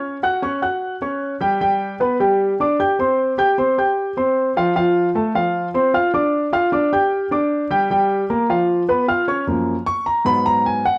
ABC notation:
X:1
M:4/4
L:1/8
Q:1/4=153
K:Gm
V:1 name="Grand piano"
[_D_d_d'] [_G_g_g'] [Ddd'] [Ggg']2 [Ddd']2 [=G,=G=g] | [G,Gg]2 [=B,=B=b] [G,Gg]2 [Ddd'] [Ggg'] [Ccc']- | [Ccc'] [Ggg'] [Ccc'] [Ggg']2 [Ccc']2 [F,Ff] | [F,Ff]2 [A,Aa] [F,Ff]2 [Ccc'] [Fff'] [Ddd']- |
[Ddd'] [Fff'] [Ddd'] [Ggg']2 [Ddd']2 [G,Gg] | [G,Gg]2 [B,Bb] [F,Ff]2 [_C_c_c'] [Fff'] [_D_d_d'] | [K:F#] z2 c' a b a g f |]
V:2 name="Grand piano" clef=bass
z8 | z8 | z8 | z8 |
z8 | z8 | [K:F#] [F,,E,A,] z3 [G,,F,B,]3 z |]